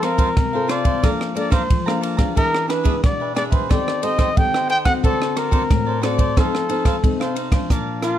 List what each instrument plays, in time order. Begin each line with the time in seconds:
Already playing: nylon-string guitar F3
0.02 nylon-string guitar C4 F4, cavaquinho F4 A4 C5 F5, trumpet A#4, cross-stick, ride
0.18 cavaquinho F4 A4 C5 F5, kick, ride
0.37 nylon-string guitar C3, kick, cross-stick, ride
0.53 nylon-string guitar C4 F4 A4, cavaquinho A4 C5 F5
0.68 cavaquinho F4 A4 C5 F5, trumpet D5, cross-stick, ride
0.84 cavaquinho A4 C5 F5, kick, ride
1.03 nylon-string guitar F3 A#3 D4 A4, cavaquinho D5 F5 A#5, kick, cross-stick, ride
1.21 cross-stick
1.34 nylon-string guitar A#3 D4 A4, cavaquinho A4 D5 F5 A#5, trumpet D5, ride
1.50 cavaquinho A4 D5 F5 A#5, trumpet C5, kick, cross-stick, ride
1.70 nylon-string guitar F3, kick, ride
1.86 nylon-string guitar A#3 D4 A4, cavaquinho D5 F5 A#5, cross-stick
2.01 cavaquinho A4 D5 F5 A#5, ride
2.17 nylon-string guitar B3 D4 G#4, cavaquinho D5 F5 A#5, kick, cross-stick, ride
2.35 nylon-string guitar E3, cavaquinho D4 G#4 E5, trumpet A#4, kick, ride
2.55 cross-stick
2.68 cavaquinho D4 G#4 B4 E5, trumpet B4, cross-stick, ride
2.84 nylon-string guitar B3 D4 G#4, cavaquinho D4 G#4 B4 E5, kick, ride
3.04 nylon-string guitar B2, trumpet D5, kick, cross-stick, ride
3.20 cavaquinho G#4 B4 E5
3.35 nylon-string guitar B3 D4 G#4, cavaquinho D4 G#4 B4 E5, trumpet D5, cross-stick, ride
3.51 cavaquinho G#4 B4 E5, trumpet C5, kick, ride
3.69 nylon-string guitar D#3 C4 G4 A4, cavaquinho A4 C5 G5, trumpet D5, kick, cross-stick, ride
3.88 cross-stick
4.02 nylon-string guitar C4 G4 A4, cavaquinho A4 C5 D#5 G5, trumpet D#5, ride
4.18 cavaquinho A4 C5 D#5 G5, kick, cross-stick, ride
4.37 nylon-string guitar D#3 C4 G4 A4, trumpet G5, kick, ride
4.54 cavaquinho C5 D#5 G5, cross-stick
4.69 cavaquinho A4 C5 D#5 G5, trumpet G5, ride
4.84 nylon-string guitar C4 F#4 A4, cavaquinho C5 D#5 G5, trumpet F#5, kick, cross-stick, ride
5.03 nylon-string guitar D3, cavaquinho F#4 A4 C5 D5, trumpet A4, kick, ride
5.22 cross-stick
5.35 cavaquinho F#4 A4 C5 D5, trumpet A#4, cross-stick, ride
5.51 nylon-string guitar C4 F#4, cavaquinho F#4 A4 C5 D5, kick, ride
5.70 nylon-string guitar A2, kick, cross-stick, ride
5.86 cavaquinho A4 C5 D5
6.01 nylon-string guitar C4 F#4 A4, cavaquinho F#4 A4 C5 D5, trumpet D5, cross-stick, ride
6.18 cavaquinho A4 C5 D5, kick, ride
6.36 nylon-string guitar F3 C4 D#4 A4, cavaquinho D#4 A4 C5 F5, trumpet A4, kick, cross-stick, ride
6.55 cross-stick
6.69 nylon-string guitar C4 D#4 A4, cavaquinho D#4 A4 C5 F5, ride
6.85 cavaquinho D#4 A4 C5 F5, kick, cross-stick, ride
7.04 nylon-string guitar C3 C4 D#4 A4, kick, ride
7.20 cavaquinho A4 C5 F5, cross-stick
7.35 cavaquinho D#4 A4 C5 F5, ride
7.51 nylon-string guitar F3 D4, cavaquinho A4 C5 F5, kick, cross-stick, ride
7.70 nylon-string guitar A#2, cavaquinho A#4 D5 F5 A5, kick, cross-stick, closed hi-hat
8.02 trumpet F4, cavaquinho A#4 D5 F5 A5, cross-stick, closed hi-hat